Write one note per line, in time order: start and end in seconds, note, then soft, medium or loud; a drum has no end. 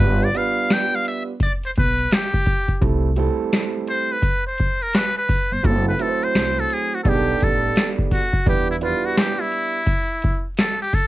0.00 0.27 G1 loud
0.00 0.25 G3 medium
0.00 0.25 B3 medium
0.00 0.25 D4 medium
0.00 0.26 F4 medium
0.00 0.26 B4 loud
0.00 0.26 B4 medium
0.24 0.39 D5 medium
0.34 1.29 G3 medium
0.34 1.30 B3 medium
0.34 1.30 D4 medium
0.34 1.30 F4 medium
0.34 1.31 B4 medium
0.34 0.75 F5 loud
0.34 closed hi-hat medium
0.70 0.97 G5 loud
0.70 snare loud
0.70 closed hi-hat medium
0.95 1.07 F5 loud
1.05 1.23 E5 loud
1.05 closed hi-hat medium
1.40 1.52 D5 loud
1.40 kick loud
1.40 closed hi-hat medium
1.63 1.71 C5 medium
1.63 closed hi-hat medium
1.76 2.04 B1 medium
1.76 2.16 B4 loud
1.76 kick loud
1.76 closed hi-hat medium
1.98 closed hi-hat medium
2.11 2.83 G4 loud
2.11 snare loud
2.11 closed hi-hat loud
2.34 kick medium
2.46 kick loud
2.46 closed hi-hat medium
2.68 kick medium
2.68 closed hi-hat soft
2.81 3.27 C2 loud
2.81 3.07 G3 medium
2.81 3.08 A3 medium
2.81 3.08 C4 medium
2.81 3.08 E4 medium
2.81 3.09 A4 medium
2.81 kick loud
2.81 closed hi-hat medium
3.16 4.12 G3 medium
3.16 4.12 A3 medium
3.16 4.12 C4 medium
3.16 4.12 E4 medium
3.16 4.13 A4 loud
3.16 closed hi-hat medium
3.53 snare loud
3.53 closed hi-hat medium
3.87 4.14 C5 medium
3.87 closed hi-hat medium
4.12 4.46 B4 medium
4.22 kick loud
4.22 closed hi-hat medium
4.47 4.84 C5 medium
4.58 kick medium
4.58 closed hi-hat medium
4.83 4.98 A#4 medium
4.93 5.17 B4 loud
4.93 snare loud
4.93 closed hi-hat medium
5.18 5.55 B4 medium
5.29 kick loud
5.29 open hi-hat medium
5.52 5.62 G1 medium
5.52 5.68 C5 medium
5.63 5.92 F#1 loud
5.63 5.89 F#3 medium
5.63 5.90 A3 medium
5.63 5.90 C4 medium
5.63 5.90 E4 medium
5.63 5.90 A4 medium
5.63 5.87 A4 medium
5.63 kick loud
5.63 closed hi-hat medium
5.88 6.03 B4 medium
5.99 6.94 F#3 medium
5.99 6.94 A3 medium
5.99 6.95 C4 medium
5.99 6.95 E4 medium
5.99 6.26 A4 medium
5.99 6.08 B4 medium
5.99 closed hi-hat medium
6.08 6.99 C5 medium
6.24 6.61 C5 medium
6.35 6.62 C2 medium
6.35 snare loud
6.35 closed hi-hat medium
6.60 6.75 A4 loud
6.70 6.96 G#4 medium
6.70 closed hi-hat medium
6.95 7.01 F#4 medium
7.04 7.33 B1 loud
7.04 8.20 G3 medium
7.04 8.20 B3 medium
7.04 8.20 D4 medium
7.04 8.21 D#4 medium
7.04 7.14 G#4 medium
7.04 7.10 A4 medium
7.04 kick loud
7.04 closed hi-hat medium
7.09 7.45 G4 medium
7.14 8.24 A4 medium
7.40 7.69 A1 loud
7.40 7.88 A4 loud
7.40 kick medium
7.40 closed hi-hat medium
7.76 snare loud
7.76 closed hi-hat loud
7.99 kick medium
8.11 8.45 F#4 medium
8.11 kick medium
8.11 open hi-hat medium
8.33 kick medium
8.46 8.91 E2 loud
8.46 8.72 G3 medium
8.46 8.72 B3 medium
8.46 8.73 D4 medium
8.46 8.73 E4 medium
8.46 8.68 G4 medium
8.46 8.73 B4 medium
8.46 kick loud
8.46 closed hi-hat medium
8.71 8.76 E4 medium
8.81 8.89 F3 medium
8.81 9.77 B3 medium
8.81 9.77 D4 medium
8.81 9.77 E4 medium
8.81 9.07 F4 medium
8.81 9.77 B4 medium
8.81 closed hi-hat medium
8.87 9.79 G3 medium
9.06 9.18 F#4 medium
9.17 9.42 G4 medium
9.17 snare loud
9.17 closed hi-hat medium
9.41 10.46 E4 loud
9.52 closed hi-hat medium
9.87 kick loud
9.87 closed hi-hat loud
10.22 kick loud
10.22 closed hi-hat medium
10.57 10.80 A4 loud
10.57 snare loud
10.57 closed hi-hat loud
10.82 10.96 G4 loud
10.93 11.07 A4 loud
10.93 kick loud
10.93 open hi-hat medium